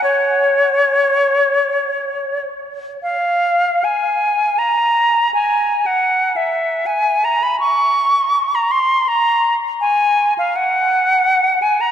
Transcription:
0.04 C#5
3.03 F5
3.84 G#5
4.59 A#5
5.34 G#5
5.86 F#5
6.36 E5
6.86 G#5
7.25 A#5
7.43 B5
7.60 C#6
8.55 A#5
8.71 C6
9.08 A#5
9.81 G#5
10.38 F5
10.56 F#5
11.62 G#5
11.81 A#5

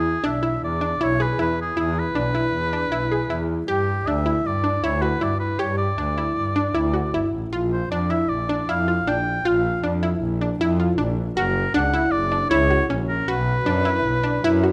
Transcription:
Already playing: E2 E4 G#4
0.24 B1 D4 E5
0.43 E4
0.62 E2 D5
0.81 D4
1.00 B1 E4 C#5
1.20 G#4 B4
1.39 E2 E4 B4
1.61 G#4
1.77 E2 E4 G#4
1.98 B4
2.14 B1 D4
2.35 E4
2.53 E2
2.73 D4
2.91 B1 E4
3.12 G#4
3.29 E2 E4
3.67 G2 G4
4.06 D2 D4 E5
4.26 E4
4.45 G2 D5
4.64 D4
4.82 D2 E4 C#5
5.02 F#4 B4
5.21 G2 E4 D5
5.39 B4
5.59 G2 G4 C#5
5.78 D5
5.97 D2 D4
6.18 E4
6.36 G2
6.56 D4
6.74 D2 E4
6.94 F#4
7.12 G1 E4
7.33 A1
7.52 A#1 F4
7.73 C5
7.90 F2 D4 D5
8.10 E4 E5
8.29 A#1 D5
8.49 D4
8.68 F2 E4 F5
8.88 F4
9.05 A#1 D4 G5
9.45 A#1 F4 F5
9.83 F2 D4
10.03 E4
10.21 A#1
10.41 D4
10.60 F2 E4
10.80 F4
10.98 A#1 D4
11.37 F#1 F#4 A#4
11.74 C#2 D4 F#5
11.94 E4
12.11 F#1 D5
12.32 D4
12.49 C#2 E4 C#5
12.71 F#4
12.90 A#1 C#4
13.08 A#4
13.28 B1 F#4 B4
13.66 F#2 D4
13.85 E4
14.05 B1
14.24 D4
14.43 F#2 E4
14.63 F#4

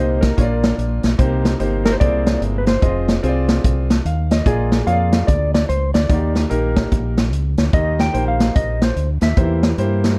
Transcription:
Already playing: C2 A#2 A#3 D#4 G4 C5 D#5
0.21 A#4, kick, snare, closed hi-hat
0.37 A#1 A#2 A#3 D4 F4 C#5, kick, closed hi-hat
0.43 D5
0.64 snare, closed hi-hat
0.78 A#1, closed hi-hat
1.03 B1, snare, closed hi-hat
1.18 C2 C3 A#3 D#4 G4 C5, kick, closed hi-hat
1.45 snare, closed hi-hat
1.59 G1 A#3 D#4 G4 C5, closed hi-hat
1.85 A#4, snare, closed hi-hat
1.92 C5
2.00 C2 C3 A#3 E4 G#4 C5 D5, kick, closed hi-hat
2.27 snare, closed hi-hat
2.41 G1, closed hi-hat
2.58 B4
2.66 C5, snare, closed hi-hat
2.82 F1 C4 F4 G#4 D#5, kick, closed hi-hat
3.08 snare, closed hi-hat
3.23 C2 C4 F4 G#4 C5, closed hi-hat
3.28 D5
3.48 snare, closed hi-hat
3.64 C2, kick, closed hi-hat
3.90 snare, closed hi-hat
4.05 D#2 F5, closed hi-hat
4.31 D#5, snare, closed hi-hat
4.46 A#1 A#2 A#3 F4 G#4 D5, kick, closed hi-hat
4.72 snare, closed hi-hat
4.87 F2 A#3 F4 G#4 C#5 F5, closed hi-hat
4.92 D5
5.12 snare, closed hi-hat
5.27 D2 D5, kick, closed hi-hat
5.54 D5, snare, closed hi-hat
5.69 C#2 C5, closed hi-hat
5.94 D2 D5, snare, closed hi-hat
6.09 D#2 D#3 A#3 D#4 F#4 D5, kick, closed hi-hat
6.14 G4
6.35 snare, closed hi-hat
6.50 A#1 A#3 D#4 G4 A#4, closed hi-hat
6.76 kick, snare, closed hi-hat
6.92 A#1, kick, closed hi-hat
7.18 snare, closed hi-hat
7.32 C#2, closed hi-hat
7.57 D2, snare, closed hi-hat
7.73 D#2 D#3 A#3 D#4 G4 D#5, kick, closed hi-hat
7.99 G5, snare, closed hi-hat
8.13 A#1 A#3 D#4 G4 C5, closed hi-hat
8.28 F5
8.40 snare, closed hi-hat
8.55 A#1 D#5, kick, closed hi-hat
8.82 C5, snare, closed hi-hat
8.96 D2, closed hi-hat
9.21 D#2 E5, snare, closed hi-hat
9.37 E2 E3 A#3 D#4 G4 C5, kick, closed hi-hat
9.42 E4
9.63 snare, closed hi-hat
9.78 G2 A#3 E4 G4 C5, closed hi-hat
10.04 snare, closed hi-hat

